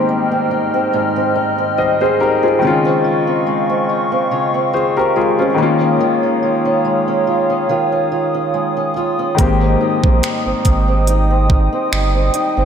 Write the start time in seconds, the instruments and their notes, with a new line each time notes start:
Already playing: steel-string acoustic guitar G#2 C4 D#4, grand piano D#3 G#3 A#3 B3 C4 G4, analog synth pad D#5 G5 F6
0.09 steel-string acoustic guitar G3
0.32 steel-string acoustic guitar C4
0.51 steel-string acoustic guitar D#4
0.74 steel-string acoustic guitar C4
0.93 steel-string acoustic guitar G#2 D#4
1.16 steel-string acoustic guitar C4
1.35 steel-string acoustic guitar D#4
1.58 steel-string acoustic guitar C4
1.78 steel-string acoustic guitar G3, grand piano C5 D#5
2.01 steel-string acoustic guitar C4, grand piano G#4 C5
2.20 steel-string acoustic guitar D#4, grand piano G4 A#4
2.43 steel-string acoustic guitar C4, grand piano F4 G#4
2.59 steel-string acoustic guitar C#3 F4, grand piano D#3 G#3 C4, analog synth pad F5 C#6
2.65 grand piano C#4 F4
2.85 steel-string acoustic guitar C4
3.04 steel-string acoustic guitar F4
3.27 steel-string acoustic guitar C4
3.47 steel-string acoustic guitar G#3
3.70 steel-string acoustic guitar C4
3.89 steel-string acoustic guitar F4
4.12 steel-string acoustic guitar C4
4.31 steel-string acoustic guitar C#3 F4
4.54 steel-string acoustic guitar C4
4.74 steel-string acoustic guitar F4, grand piano G#4 C5
4.97 steel-string acoustic guitar C4, grand piano G4 A#4
5.16 steel-string acoustic guitar G#3, grand piano F4 G#4
5.39 steel-string acoustic guitar C4, grand piano C#4 F4
5.54 grand piano D#3 G#3 A#3, steel-string acoustic guitar D#3, analog synth pad C#5 F5 D#6
5.60 grand piano C#4 F4
5.81 steel-string acoustic guitar C#4
6.00 steel-string acoustic guitar D#3 F4
6.23 steel-string acoustic guitar C#4
6.43 steel-string acoustic guitar F4
6.65 steel-string acoustic guitar C#4
6.85 steel-string acoustic guitar G#3
7.08 steel-string acoustic guitar C#4
7.27 steel-string acoustic guitar F4
7.50 steel-string acoustic guitar C#4
7.69 steel-string acoustic guitar D#3 F4
7.92 steel-string acoustic guitar C#4
8.12 steel-string acoustic guitar F4
8.34 steel-string acoustic guitar C#4
8.54 steel-string acoustic guitar G#3
8.77 steel-string acoustic guitar C#4
8.96 steel-string acoustic guitar F4
9.19 steel-string acoustic guitar C#4
9.35 steel-string acoustic guitar G#2, grand piano D#3 G#3 A#3, kick, closed hi-hat
9.39 sub bass G#1, grand piano C4 G4, steel-string acoustic guitar D#4, analog synth pad D#5 G5
9.61 steel-string acoustic guitar C4
9.81 steel-string acoustic guitar D#4
10.04 sub bass A#1, steel-string acoustic guitar C4, kick
10.23 steel-string acoustic guitar G3, finger snap, closed hi-hat
10.46 sub bass G#1, steel-string acoustic guitar C4
10.65 sub bass G#1, steel-string acoustic guitar D#4, kick, closed hi-hat
10.88 steel-string acoustic guitar C4
11.07 steel-string acoustic guitar D#4, closed hi-hat
11.30 steel-string acoustic guitar C4
11.50 steel-string acoustic guitar D#4, kick
11.73 steel-string acoustic guitar C4
11.92 sub bass G1, steel-string acoustic guitar G3, finger snap
12.15 steel-string acoustic guitar C4
12.34 steel-string acoustic guitar D#4, closed hi-hat
12.57 sub bass G1, steel-string acoustic guitar C4